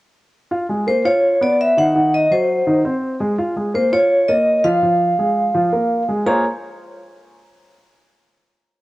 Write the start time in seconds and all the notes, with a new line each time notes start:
0.51 F4 F5
0.69 G#3 G#4
0.87 A#3 A#4 C5
1.05 F4 C#5 F5
1.41 B3 B4 D5
1.61 E5
1.77 D#3 D#4 F#5
1.95 D#3 D#4
2.14 D#5
2.31 F#3 F#4 C5
2.67 D#3 D#4
2.85 C4 C5
3.20 G#3 G#4
3.38 F4 F5
3.56 G#3 G#4
3.74 A#3 A#4 C5
3.92 F4 C#5 F5
4.28 A#3 A#4 D#5
4.64 F3 F4 F5
4.82 F3 F4
5.18 G#3 G#4
5.54 F3 F4
5.72 A#3 A#4
6.08 G#3 G#4
6.26 A#3 F4 G#4 A#4 C5 C#5 A#5